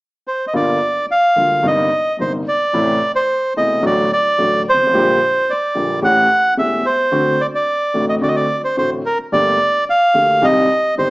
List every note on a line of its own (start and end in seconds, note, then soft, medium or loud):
0.27 0.46 C5 soft
0.47 0.54 D#5 soft
0.53 0.77 G1 medium
0.53 0.77 G2 soft
0.53 0.76 D3 soft
0.53 0.76 G3 soft
0.53 0.77 A#3 soft
0.53 0.77 F4 medium
0.53 1.06 D5 medium
1.11 1.67 F5 medium
1.36 1.59 D2 soft
1.36 1.60 D3 soft
1.36 1.60 G3 soft
1.36 1.59 A#3 soft
1.36 1.60 F4 soft
1.63 1.86 G1 medium
1.63 1.87 G2 medium
1.63 1.86 C3 soft
1.63 1.86 G3 soft
1.63 1.87 A#3 soft
1.63 1.87 D#4 medium
1.67 2.17 D#5 medium
2.19 2.42 G1 soft
2.19 2.42 G2 soft
2.19 2.42 C3 soft
2.19 2.42 G3 soft
2.19 2.42 A#3 soft
2.19 2.42 D#4 soft
2.19 2.33 C5 medium
2.48 3.12 D5 medium
2.73 2.97 A1 medium
2.73 2.97 A2 medium
2.73 2.96 C3 soft
2.73 2.97 E3 soft
2.73 2.97 A3 soft
2.73 2.97 E4 medium
3.15 3.53 C5 medium
3.56 3.79 E1 soft
3.56 3.79 E2 soft
3.56 3.79 C3 soft
3.56 3.79 E3 soft
3.56 3.80 A3 soft
3.56 3.80 E4 soft
3.56 3.85 D#5 medium
3.82 4.06 A1 medium
3.82 4.06 A2 medium
3.82 4.06 D3 soft
3.82 4.06 F#3 soft
3.82 4.06 A3 soft
3.82 4.06 F#4 medium
3.86 4.11 D5 medium
4.13 4.63 D5 medium
4.38 4.61 A1 soft
4.38 4.62 A2 soft
4.38 4.62 D3 soft
4.38 4.62 F#3 soft
4.38 4.61 A3 soft
4.38 4.62 F#4 soft
4.69 5.52 C5 medium
4.73 4.80 G1 soft
4.81 4.87 G#1 soft
4.87 4.93 A1 medium
4.94 5.17 A#1 medium
4.94 5.17 A#2 medium
4.94 5.16 D3 medium
4.94 5.16 G3 soft
4.94 5.17 A#3 soft
4.94 5.17 G4 medium
5.50 6.00 D5 medium
5.75 5.98 A#1 soft
5.75 5.98 A#2 soft
5.75 5.98 D3 soft
5.75 5.98 G3 soft
5.75 5.98 A#3 soft
5.75 5.98 G4 soft
6.02 6.25 A1 medium
6.02 6.25 A2 medium
6.02 6.25 E3 medium
6.02 6.25 A3 soft
6.02 6.26 C#4 soft
6.02 6.25 G4 medium
6.02 6.54 F#5 medium
6.57 6.80 E1 soft
6.57 6.80 E2 soft
6.57 6.80 E3 soft
6.57 6.80 A3 soft
6.57 6.80 C#4 soft
6.57 6.80 G4 soft
6.57 6.86 E5 medium
6.86 7.42 C5 medium
7.12 7.35 D2 medium
7.12 7.35 D3 medium
7.12 7.35 A3 soft
7.12 7.35 C4 soft
7.12 7.35 F#4 medium
7.41 7.47 D5 medium
7.55 8.05 D5 medium
7.94 8.18 A1 soft
7.94 8.18 A2 soft
7.94 8.17 D3 soft
7.94 8.18 A3 soft
7.94 8.18 C4 soft
7.94 8.18 F#4 soft
8.09 8.15 D#5 medium
8.21 8.45 D2 medium
8.21 8.45 D3 medium
8.21 8.45 A3 soft
8.21 8.45 C4 soft
8.21 8.45 F#4 medium
8.21 8.29 D5 medium
8.28 8.36 D#5 medium
8.36 8.62 D5 medium
8.64 8.76 C5 medium
8.77 9.01 A1 soft
8.77 9.01 A2 soft
8.77 9.01 D3 soft
8.77 9.01 A3 soft
8.77 9.01 C4 soft
8.77 9.01 F#4 soft
8.77 8.90 C5 medium
9.06 9.18 A#4 medium
9.32 9.56 G1 medium
9.32 9.56 G2 medium
9.32 9.56 D3 soft
9.32 9.56 A3 soft
9.32 9.56 A#3 soft
9.32 9.56 G4 medium
9.32 9.84 D5 medium
9.90 10.46 F5 medium
10.14 10.38 D2 soft
10.14 10.38 D3 soft
10.14 10.38 A3 soft
10.14 10.38 A#3 soft
10.14 10.38 G4 soft
10.41 10.66 C2 medium
10.41 10.66 C3 medium
10.41 10.65 D#3 soft
10.41 10.66 G3 soft
10.41 10.66 C4 soft
10.41 10.66 G4 medium
10.41 10.95 D#5 medium
10.98 11.10 G1 soft
10.98 11.10 G2 soft
10.98 11.10 D#3 soft
10.98 11.10 G3 soft
10.98 11.10 C4 soft
10.98 11.10 G4 soft
10.98 11.10 C5 medium